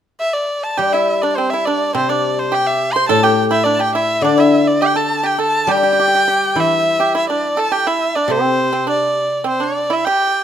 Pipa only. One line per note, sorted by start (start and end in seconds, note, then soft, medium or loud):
0.77 0.92 G4 medium
0.94 1.21 E4 medium
1.23 1.36 D4 medium
1.38 1.51 C4 medium
1.53 1.66 E4 medium
1.67 1.93 D4 medium
1.95 2.08 C4 medium
2.10 2.49 D4 medium
2.52 2.92 G4 medium
2.96 3.09 C5 medium
3.09 3.23 A4 medium
3.23 3.50 G4 medium
3.51 3.65 E4 medium
3.65 3.79 D4 medium
3.79 3.94 G4 medium
3.95 4.22 E4 medium
4.25 4.37 D4 medium
4.38 4.79 E4 medium
4.82 4.95 G4 medium
4.96 5.23 A4 medium
5.23 5.38 G4 medium
5.39 5.67 A4 medium
5.68 5.76 G4 medium
5.77 5.82 G4 soft
5.83 5.91 G4 medium
5.93 5.98 G4 soft
6.00 6.07 G4 soft
6.08 6.14 G4 soft
6.15 6.22 G4 soft
6.28 6.55 G4 medium
6.56 6.97 E4 medium
7.00 7.13 G4 medium
7.15 7.28 E4 medium
7.30 7.56 D4 medium
7.57 7.71 A4 medium
7.72 7.85 G4 medium
7.87 8.13 E4 medium
8.16 8.29 D4 medium
8.30 8.70 C4 medium
8.73 8.86 C4 medium
8.87 9.59 D4 medium
9.44 9.58 C4 medium
9.60 9.88 D4 medium
9.90 10.04 E4 medium
10.07 10.44 G4 medium